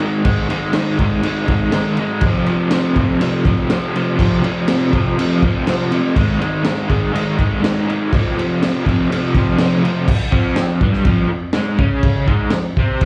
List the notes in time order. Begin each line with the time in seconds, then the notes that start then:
0.00 G#2 D#3 G#3, crash
0.24 G#2 D#3 G#3, kick, crash
0.49 G#2 D#3 G#3, crash
0.73 G#2 D#3 G#3, snare, crash
0.98 G#2 D#3 G#3, kick, crash
1.22 G#2 D#3 G#3, crash
1.47 G#2 D#3 G#3, kick, crash
1.72 G#2 D#3 G#3, snare, crash
1.97 G#2 D#3 G#3, crash
2.21 F2, kick, crash
2.26 C3 F3
2.46 F2 C3 F3, crash
2.71 F2 C3 F3, snare, crash
2.96 F2 C3 F3, kick, crash
3.20 F2 C3 F3, crash
3.45 F2 C3 F3, kick, crash
3.70 F2 C3 F3, snare, crash
3.95 F2 C3 F3, crash
4.17 F2 C3 F3, kick, crash
4.43 F2 C3 F3, crash
4.68 F2 C3 F3, snare, crash
4.93 F2 C3 F3, kick, crash
5.18 F2 C3 F3, crash
5.42 F2 C3 F3, kick, crash
5.67 F2 C3 F3, snare, crash
5.92 F2 C3 F3, crash
6.16 G#2 D#3 G#3, kick, crash
6.40 G#2 D#3 G#3, crash
6.64 G#2 D#3 G#3, snare, crash
6.89 G#2 D#3 G#3, kick, crash
7.12 G#2 D#3 G#3, crash
7.38 G#2 D#3 G#3, kick, crash
7.62 G#2 D#3 G#3, snare, crash
7.87 G#2 D#3 G#3, crash
8.13 F2 C3 F3, kick, crash
8.37 F2 C3 F3, crash
8.62 F2 C3 F3, snare, crash
8.86 F2 C3 F3, kick, crash
9.11 F2 C3 F3, crash
9.35 F2 C3 F3, kick, crash
9.59 F2 C3 F3, snare, crash
9.84 F2 C3 F3, crash
10.08 muted overdriven electric guitar stroke, kick, crash
10.31 F2 F3, kick
10.56 snare, crash
10.81 G2 G3, kick
10.93 snare
11.05 F2 F3, kick, crash
11.29 F2
11.53 G#2 G#3, snare, crash
11.78 C#3 C#4, kick
12.03 kick, crash
12.27 G#2 G#3, kick
12.50 F2, snare, crash
12.77 C3 C4, kick
13.01 kick, crash